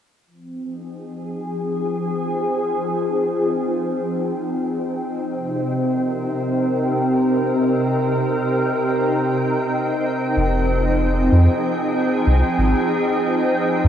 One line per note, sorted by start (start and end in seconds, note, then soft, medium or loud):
0.26 5.31 F3 medium
0.33 13.88 C4 medium
0.50 13.88 D#4 medium
0.57 5.32 G#4 medium
1.44 13.88 G5 medium
5.31 10.36 C3 medium
5.67 11.67 A#4 medium
10.36 11.29 F1 medium
10.36 13.88 F3 medium
10.90 13.88 G#4 medium
11.32 11.48 F2 medium
12.26 12.43 C2 medium
12.58 12.74 G#1 medium
13.84 13.88 F2 medium